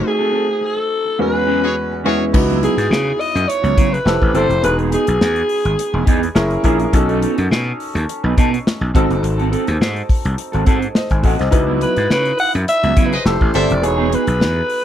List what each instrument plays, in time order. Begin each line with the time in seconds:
Already playing: grand piano A3 C4 D#4 F#4, horn section A4 C5 D#5
0.04 alto saxophone G#4, muted clean electric guitar stroke
0.18 clean electric guitar C4 F#4 A4
0.32 clean electric guitar C4 F#4 A4
0.48 muted clean electric guitar stroke
0.61 muted clean electric guitar stroke
0.66 alto saxophone A4
0.76 muted clean electric guitar stroke
1.05 muted clean electric guitar stroke
1.18 grand piano E2 G#3 B3 C#4 F#4, alto saxophone B4, muted clean electric guitar stroke
1.33 clean electric guitar C#4 F#4 G#4
1.46 clean electric guitar C#4 F#4 G#4
1.62 horn section F#4 G#4 C#5, muted clean electric guitar stroke
1.91 muted clean electric guitar stroke
2.04 grand piano E2 G#3 B3 C#4 E4, clean electric guitar C#4 F#4 G#4, horn section F#4 G#4 C#5
2.19 muted clean electric guitar stroke
2.33 slap bass C#2, grand piano B3 D#4 E4 F#4, kick, crash
2.48 clean electric guitar F#3 B3 E4, closed hi-hat
2.61 clean electric guitar F#3 B3 E4, alto saxophone G#4, closed hi-hat
2.77 slap bass G#2, snare, closed hi-hat
2.89 slap bass C#3, muted clean electric guitar stroke, snare
3.06 muted clean electric guitar stroke
3.20 alto saxophone D#5, open hi-hat
3.34 slap bass F#2, muted clean electric guitar stroke, closed hi-hat
3.47 alto saxophone C#5, muted clean electric guitar stroke, closed hi-hat
3.62 slap bass C#2, clean electric guitar F#3 B3 F#4, closed hi-hat
3.76 slap bass C#3, clean electric guitar F#3 B3 E4, kick, closed hi-hat
3.91 alto saxophone B4, muted clean electric guitar stroke, closed hi-hat
4.05 slap bass F1, grand piano C4 E4 G4 A4, snare
4.20 slap bass A1, muted clean electric guitar stroke, kick
4.33 slap bass G1, clean electric guitar C4 E4 A4, grand piano C4 E4 G4 A4, alto saxophone C5, closed hi-hat
4.49 slap bass F1, muted clean electric guitar stroke, closed hi-hat
4.62 slap bass E1, grand piano B3 D#4 F#4 G#4, alto saxophone B4, muted clean electric guitar stroke, closed hi-hat
4.78 clean electric guitar B3 D#4 G#4, closed hi-hat
4.91 clean electric guitar B3 D#4 G#4, alto saxophone G#4, closed hi-hat
5.06 slap bass B1, muted clean electric guitar stroke, closed hi-hat
5.20 slap bass E2, muted clean electric guitar stroke, snare
5.35 muted clean electric guitar stroke, closed hi-hat
5.49 open hi-hat
5.64 slap bass G#1, muted clean electric guitar stroke, closed hi-hat
5.77 muted clean electric guitar stroke, closed hi-hat
5.93 slap bass E1, clean electric guitar B3 D#4 G#4
6.06 slap bass E2, clean electric guitar B3 D#4 G#4, kick, closed hi-hat
6.21 muted clean electric guitar stroke, closed hi-hat
6.35 slap bass F#1, grand piano C#4 E4 G#4 A#4, snare
6.50 muted clean electric guitar stroke, closed hi-hat
6.62 slap bass A#1, clean electric guitar A#3 E4 G#4, grand piano C#4 E4 G#4 A#4, kick, closed hi-hat
6.78 muted clean electric guitar stroke, closed hi-hat
6.93 slap bass B1, grand piano C#4 D#4 F#4 A4, muted clean electric guitar stroke, kick, closed hi-hat
7.08 clean electric guitar B3 D#4 A4, closed hi-hat
7.21 clean electric guitar B3 D#4 A4, closed hi-hat
7.36 slap bass F#2, muted clean electric guitar stroke, closed hi-hat
7.50 slap bass B2, muted clean electric guitar stroke, snare
7.66 muted clean electric guitar stroke
7.80 open hi-hat
7.94 slap bass D#2, muted clean electric guitar stroke, closed hi-hat
8.08 muted clean electric guitar stroke, closed hi-hat
8.23 slap bass B1, clean electric guitar B3 D#4 B4
8.37 slap bass B2, clean electric guitar B3 D#4 A4, kick, closed hi-hat
8.52 muted clean electric guitar stroke, closed hi-hat
8.67 snare
8.81 slap bass B1, muted clean electric guitar stroke
8.94 slap bass G#1, clean electric guitar C4 F#4 A4, grand piano C4 D#4 F#4 A4, kick, closed hi-hat
9.09 slap bass F#1, muted clean electric guitar stroke, closed hi-hat
9.22 slap bass G#1, muted clean electric guitar stroke, closed hi-hat
9.38 clean electric guitar C4 F#4 A4, closed hi-hat
9.51 clean electric guitar C4 F#4 A4, closed hi-hat
9.66 slap bass D#2, muted clean electric guitar stroke, closed hi-hat
9.79 slap bass G#2, muted clean electric guitar stroke, snare
9.95 muted clean electric guitar stroke, closed hi-hat
10.09 kick, open hi-hat
10.24 slap bass C2, muted clean electric guitar stroke, closed hi-hat
10.37 muted clean electric guitar stroke, closed hi-hat
10.52 slap bass G#1, clean electric guitar C4 F#4 A4, closed hi-hat
10.65 slap bass G#2, clean electric guitar C4 F#4 A4, kick, closed hi-hat
10.81 muted clean electric guitar stroke, closed hi-hat
10.94 grand piano C5 D#5, muted clean electric guitar stroke, snare
11.09 slap bass G#1, grand piano G#5, muted clean electric guitar stroke, kick, closed hi-hat
11.22 slap bass A1, clean electric guitar C4 F#4 A4, grand piano D#5 F#5, kick, open hi-hat
11.38 slap bass C2, grand piano C5 D#5, muted clean electric guitar stroke, snare, closed hi-hat
11.51 slap bass C#2, grand piano D#4 E4 F#4 B4, muted clean electric guitar stroke, kick, closed hi-hat
11.67 clean electric guitar F#3 B3 E4
11.81 clean electric guitar F#3 B3 E4, alto saxophone B4, closed hi-hat
11.96 slap bass G#2, muted clean electric guitar stroke, closed hi-hat
12.10 slap bass C#3, alto saxophone B4, muted clean electric guitar stroke, snare
12.25 muted clean electric guitar stroke, closed hi-hat
12.39 alto saxophone F#5, open hi-hat
12.54 slap bass F#2, muted clean electric guitar stroke, closed hi-hat
12.67 alto saxophone E5, muted clean electric guitar stroke, closed hi-hat
12.83 slap bass C#2, clean electric guitar F#3 B3 F#4, closed hi-hat
12.96 slap bass C#3, clean electric guitar F#3 B3 E4, kick, closed hi-hat
13.06 alto saxophone B4
13.12 horn section G#4 B4 D#5, alto saxophone C5, muted clean electric guitar stroke, closed hi-hat
13.25 slap bass F1, grand piano C4 E4 G4 A4, snare
13.41 slap bass A1, muted clean electric guitar stroke, kick
13.53 slap bass G1, clean electric guitar C4 E4 A4, grand piano C4 E4 G4 A4, horn section A4 C5 E5, alto saxophone D5, closed hi-hat
13.69 slap bass F1, muted clean electric guitar stroke, closed hi-hat
13.82 slap bass E1, grand piano B3 D#4 F#4 G#4, alto saxophone C#5, muted clean electric guitar stroke, closed hi-hat
13.97 clean electric guitar B3 D#4 G#4
14.10 clean electric guitar B3 D#4 G#4, closed hi-hat
14.14 alto saxophone B4
14.25 slap bass B1, muted clean electric guitar stroke, closed hi-hat
14.38 slap bass E2, muted clean electric guitar stroke, snare
14.54 muted clean electric guitar stroke
14.70 open hi-hat